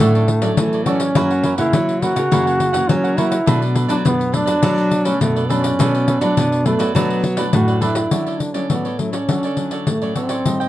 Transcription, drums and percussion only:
0.00 pandeiro
0.15 pandeiro
0.28 pandeiro
0.42 pandeiro
0.57 pandeiro
0.73 pandeiro
0.86 pandeiro
1.00 pandeiro
1.15 pandeiro
1.30 pandeiro
1.43 pandeiro
1.58 pandeiro
1.73 pandeiro
1.89 pandeiro
2.02 pandeiro
2.16 pandeiro
2.32 pandeiro
2.47 pandeiro
2.60 pandeiro
2.74 pandeiro
2.89 pandeiro
3.05 pandeiro
3.18 pandeiro
3.32 pandeiro
3.47 pandeiro
3.62 pandeiro
3.75 pandeiro
3.90 pandeiro
4.05 pandeiro
4.21 pandeiro
4.34 pandeiro
4.47 pandeiro
4.63 pandeiro
4.78 pandeiro
4.91 pandeiro
5.05 pandeiro
5.21 pandeiro
5.36 pandeiro
5.50 pandeiro
5.64 pandeiro
5.80 pandeiro
5.95 pandeiro
6.08 pandeiro
6.22 pandeiro
6.37 pandeiro
6.52 pandeiro
6.66 pandeiro
6.80 pandeiro
6.96 pandeiro
7.10 pandeiro
7.24 pandeiro
7.37 pandeiro
7.53 pandeiro
7.68 pandeiro
7.82 pandeiro
7.95 pandeiro
8.11 pandeiro
8.26 pandeiro
8.40 pandeiro
8.54 pandeiro
8.70 pandeiro
8.85 pandeiro
8.99 pandeiro
9.13 pandeiro
9.29 pandeiro
9.43 pandeiro
9.57 pandeiro
9.71 pandeiro
9.87 pandeiro
10.02 pandeiro
10.16 pandeiro
10.29 pandeiro
10.46 pandeiro
10.61 pandeiro

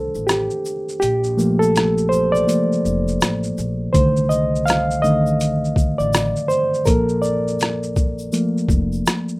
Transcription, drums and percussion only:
0.15 shaker
0.28 cross-stick, closed hi-hat, shaker
0.50 shaker
0.65 shaker
0.89 shaker
1.02 closed hi-hat, shaker
1.24 shaker
1.39 shaker
1.62 shaker
1.76 cross-stick, closed hi-hat, shaker
1.98 shaker
2.12 shaker
2.35 shaker
2.48 closed hi-hat, shaker
2.72 shaker
2.85 shaker
3.08 shaker
3.21 cross-stick, closed hi-hat, shaker
3.43 shaker
3.58 shaker
3.94 kick, closed hi-hat, shaker
4.16 shaker
4.31 shaker
4.55 shaker
4.67 cross-stick, closed hi-hat, shaker
4.91 shaker
5.04 shaker
5.26 shaker
5.40 closed hi-hat, shaker
5.65 shaker
5.76 kick, shaker
6.00 shaker
6.13 cross-stick, closed hi-hat, shaker
6.36 shaker
6.50 shaker
6.74 shaker
6.85 kick, closed hi-hat, shaker
6.87 shaker
7.09 shaker
7.23 shaker
7.24 shaker
7.48 shaker
7.59 cross-stick, closed hi-hat, shaker
7.83 shaker
7.96 kick, shaker
8.19 shaker
8.32 closed hi-hat, shaker
8.34 shaker
8.57 shaker
8.69 kick, shaker
8.92 shaker
9.06 cross-stick, closed hi-hat, shaker
9.28 shaker

